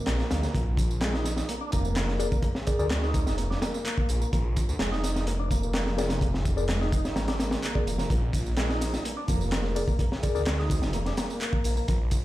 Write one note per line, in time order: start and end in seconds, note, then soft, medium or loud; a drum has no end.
0.07 0.23 A#1 loud
0.07 0.42 A#3 medium
0.07 snare loud
0.07 clap loud
0.07 closed hi-hat medium
0.07 tambourine soft
0.19 snare medium
0.31 0.46 D2 loud
0.31 snare loud
0.31 closed hi-hat medium
0.31 tambourine medium
0.43 0.53 A#3 medium
0.43 snare soft
0.43 tambourine soft
0.55 1.42 A#1 loud
0.55 0.61 A#3 medium
0.55 kick loud
0.55 closed hi-hat medium
0.55 tambourine soft
0.77 kick medium
0.77 closed hi-hat medium
0.77 tambourine medium
0.91 tambourine soft
1.01 1.13 G#3 medium
1.01 snare loud
1.01 clap loud
1.01 closed hi-hat medium
1.01 tambourine soft
1.13 1.48 D#4 medium
1.13 snare medium
1.25 snare soft
1.25 closed hi-hat medium
1.25 tambourine medium
1.37 snare soft
1.37 tambourine soft
1.49 1.55 A#3 medium
1.49 closed hi-hat medium
1.49 tambourine soft
1.61 1.71 D4 medium
1.72 2.25 F1 medium
1.72 1.95 A#3 medium
1.72 kick medium
1.72 closed hi-hat medium
1.72 tambourine medium
1.85 tambourine soft
1.96 2.31 A#3 medium
1.96 snare loud
1.96 clap loud
1.96 closed hi-hat loud
1.96 tambourine soft
2.08 snare medium
2.19 2.26 G#4 medium
2.19 2.26 A#4 medium
2.19 2.26 D5 loud
2.19 closed hi-hat medium
2.19 tambourine medium
2.32 2.43 A#3 medium
2.32 kick loud
2.32 tambourine soft
2.42 2.50 A#3 medium
2.42 kick loud
2.42 closed hi-hat medium
2.42 tambourine soft
2.55 snare medium
2.67 2.77 G#4 medium
2.67 2.77 A#4 medium
2.67 2.77 D5 medium
2.67 kick loud
2.67 closed hi-hat medium
2.67 tambourine medium
2.79 3.28 D2 medium
2.79 2.85 G#4 medium
2.79 2.85 A#4 medium
2.79 2.85 D5 loud
2.79 tambourine soft
2.90 3.02 G#3 medium
2.90 snare loud
2.90 clap loud
2.90 closed hi-hat medium
2.90 tambourine soft
3.02 3.37 D#4 medium
3.02 snare soft
3.14 kick loud
3.14 closed hi-hat medium
3.14 tambourine medium
3.27 3.55 F1 loud
3.27 snare soft
3.27 tambourine soft
3.38 3.44 A#3 medium
3.38 closed hi-hat medium
3.38 tambourine soft
3.50 3.60 D4 medium
3.50 snare soft
3.62 3.84 A#3 medium
3.62 snare loud
3.62 closed hi-hat medium
3.62 tambourine medium
3.74 tambourine soft
3.85 4.20 A#3 medium
3.85 clap loud
3.85 closed hi-hat medium
3.85 tambourine soft
3.98 kick medium
4.09 4.24 A#1 loud
4.09 closed hi-hat medium
4.09 tambourine medium
4.21 4.32 A#3 medium
4.21 tambourine soft
4.33 4.62 A#1 loud
4.33 4.39 A#3 medium
4.33 kick loud
4.33 closed hi-hat medium
4.33 tambourine soft
4.56 kick loud
4.56 closed hi-hat medium
4.56 tambourine medium
4.68 4.76 D2 medium
4.68 tambourine soft
4.79 6.98 F1 medium
4.79 4.91 G#3 medium
4.79 snare loud
4.79 clap loud
4.79 closed hi-hat medium
4.79 tambourine soft
4.92 5.26 D#4 medium
4.92 snare medium
5.04 snare soft
5.04 closed hi-hat medium
5.04 tambourine medium
5.16 snare soft
5.16 tambourine soft
5.27 5.33 A#3 medium
5.27 closed hi-hat medium
5.27 tambourine soft
5.40 5.49 D4 medium
5.51 5.73 A#3 medium
5.51 kick medium
5.51 closed hi-hat medium
5.51 tambourine medium
5.63 tambourine soft
5.74 6.09 A#3 medium
5.74 snare loud
5.74 clap loud
5.74 closed hi-hat loud
5.74 tambourine soft
5.86 snare soft
5.98 6.04 G#4 loud
5.98 6.04 A#4 medium
5.98 6.04 D5 loud
5.98 snare loud
5.98 closed hi-hat medium
5.98 tambourine medium
6.09 6.20 A#3 medium
6.09 snare loud
6.09 closed hi-hat medium
6.09 tambourine soft
6.21 6.28 A#3 medium
6.21 kick loud
6.21 closed hi-hat medium
6.21 tambourine soft
6.34 snare medium
6.45 kick loud
6.45 closed hi-hat medium
6.45 tambourine medium
6.57 6.63 G#4 medium
6.57 6.63 A#4 medium
6.57 6.63 D5 loud
6.57 tambourine soft
6.69 6.80 G#3 medium
6.69 snare loud
6.69 clap loud
6.69 closed hi-hat medium
6.69 tambourine soft
6.81 7.15 D#4 medium
6.81 snare soft
6.92 kick medium
6.92 closed hi-hat medium
6.92 tambourine medium
7.05 snare medium
7.05 tambourine soft
7.16 7.56 G#1 loud
7.16 7.22 A#3 medium
7.16 snare loud
7.16 closed hi-hat medium
7.16 tambourine soft
7.28 7.38 D4 medium
7.28 snare loud
7.28 closed hi-hat medium
7.40 7.62 A#3 medium
7.40 snare loud
7.40 closed hi-hat medium
7.40 tambourine medium
7.51 snare loud
7.51 closed hi-hat medium
7.51 tambourine soft
7.63 7.98 A#3 medium
7.63 clap loud
7.63 closed hi-hat loud
7.63 tambourine soft
7.75 7.81 G#4 medium
7.75 7.81 A#4 medium
7.75 7.81 D5 medium
7.75 kick medium
7.86 8.02 F1 medium
7.86 closed hi-hat medium
7.86 tambourine medium
7.98 8.10 A#3 medium
7.98 snare soft
7.98 tambourine soft
8.10 8.98 A#1 loud
8.10 8.17 A#3 medium
8.10 kick loud
8.10 closed hi-hat medium
8.10 tambourine soft
8.33 kick loud
8.33 closed hi-hat medium
8.33 ride medium
8.33 tambourine medium
8.46 tambourine soft
8.57 8.69 G#3 medium
8.57 snare loud
8.57 clap loud
8.57 closed hi-hat medium
8.57 tambourine soft
8.69 9.04 D#4 medium
8.69 snare medium
8.81 snare soft
8.81 closed hi-hat medium
8.81 ride medium
8.81 tambourine medium
8.93 snare soft
8.93 tambourine soft
9.05 9.11 A#3 medium
9.05 closed hi-hat medium
9.05 tambourine soft
9.17 9.27 D4 medium
9.28 9.81 F1 medium
9.28 9.51 A#3 medium
9.28 kick loud
9.28 closed hi-hat medium
9.28 ride medium
9.28 tambourine medium
9.41 tambourine soft
9.52 9.87 A#3 medium
9.52 snare loud
9.52 clap loud
9.52 closed hi-hat medium
9.52 tambourine soft
9.64 snare soft
9.76 9.82 G#4 medium
9.76 9.82 A#4 medium
9.76 9.82 D5 loud
9.76 closed hi-hat medium
9.76 ride medium
9.76 tambourine medium
9.88 9.99 A#3 medium
9.88 kick loud
9.88 tambourine soft
9.99 10.06 A#3 medium
9.99 kick loud
9.99 closed hi-hat medium
9.99 tambourine soft
10.12 snare medium
10.23 10.33 G#4 medium
10.23 10.33 A#4 medium
10.23 10.33 D5 medium
10.23 kick loud
10.23 closed hi-hat medium
10.23 ride medium
10.23 tambourine medium
10.35 10.84 D2 medium
10.35 10.41 G#4 medium
10.35 10.41 A#4 medium
10.35 10.41 D5 loud
10.35 tambourine soft
10.46 10.57 G#3 medium
10.46 snare loud
10.46 clap loud
10.46 closed hi-hat medium
10.59 10.93 D#4 medium
10.59 snare soft
10.70 kick medium
10.70 closed hi-hat medium
10.70 ride medium
10.70 tambourine medium
10.82 11.11 F1 loud
10.82 snare medium
10.82 tambourine soft
10.93 11.00 A#3 medium
10.93 closed hi-hat medium
10.93 tambourine soft
11.06 11.16 D4 medium
11.06 snare soft
11.06 ride soft
11.17 11.40 A#3 medium
11.17 snare loud
11.17 closed hi-hat medium
11.17 ride medium
11.17 tambourine medium
11.30 tambourine soft
11.41 11.76 A#3 medium
11.41 clap loud
11.41 closed hi-hat medium
11.41 tambourine soft
11.53 kick loud
11.64 11.80 A#1 medium
11.64 closed hi-hat medium
11.64 ride medium
11.64 tambourine medium
11.77 11.87 A#3 medium
11.77 tambourine soft
11.88 12.17 A#1 loud
11.88 11.95 A#3 medium
11.88 kick loud
11.88 closed hi-hat medium
11.88 tambourine soft
12.11 kick loud
12.11 closed hi-hat medium
12.11 ride medium
12.11 tambourine medium